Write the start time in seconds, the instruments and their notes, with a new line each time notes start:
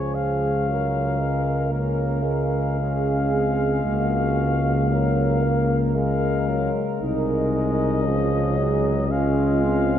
Already playing: tuba C#2, trombone F3, trombone section G#3, french horn section G#4, cornet C#5
0.15 cornet F5
0.68 trombone F#3, french horn section A#4
1.20 trombone G#3
1.71 trombone A#3, trombone section C#4, cornet F5
2.23 trombone G#3
2.77 trombone section C#4, french horn section G#4
3.30 trombone section C4
3.84 tuba C#2, trombone section A#3, french horn section F#4
4.89 trombone F#3, french horn section A#4
5.43 trombone A#3
5.95 trombone G#3, trombone section G#3, cornet F5
6.48 trombone F#3
7.00 tuba C2, trombone G#3, trombone section D#4, cornet D#5
8.04 tuba C#2, trombone F3, trombone section C#4, french horn section G#4
8.58 trombone F#3
9.10 trombone G#3, trombone section C#4, french horn section F4, cornet F5
9.60 trombone section C4